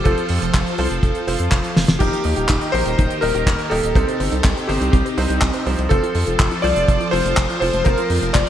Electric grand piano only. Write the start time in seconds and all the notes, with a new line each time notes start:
0.04 A4
1.99 G4
2.72 C5
3.21 A#4
3.70 A4
4.67 G4
4.92 G4
5.89 A4
6.62 D5
7.11 C5
7.60 C5
7.84 A#4
8.33 D5